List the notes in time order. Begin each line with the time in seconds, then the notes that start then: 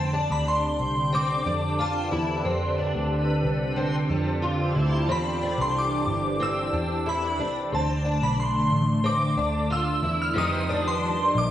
Already playing: F2 D3 C4 D4 G4 A4 G5 A5
0.13 D4
0.30 D2 B5
0.48 C6
0.80 C2
1.12 C4 B4 D6
1.46 F2 D4
1.79 F4 A5
2.11 E2 E4
2.44 F2 C4 C5
2.78 D4
2.95 D2
3.10 F4
3.32 A5
3.44 C2
3.76 C4
4.10 F2 D4
4.43 F4
4.75 D2 E4
5.07 E2 E3 C4 C5
5.12 B5
5.42 D4
5.58 C2 C6
5.78 D6
6.07 G1
6.40 C4 E6
6.73 E2 D4
7.06 E4 B5
7.39 C2 D4
7.72 D2 D3 A3 C4 A5
8.05 D4
8.22 B1 B5
8.40 C6
8.71 A1
9.04 C4 B4 D6
9.37 D2 D4
9.70 F4 E6
10.03 E2 E4
10.22 F6
10.34 F2 D#3 F3 G3 C4 D#4 G4
10.38 G4 D#6
10.69 D4
10.88 C6
11.35 A#1 D6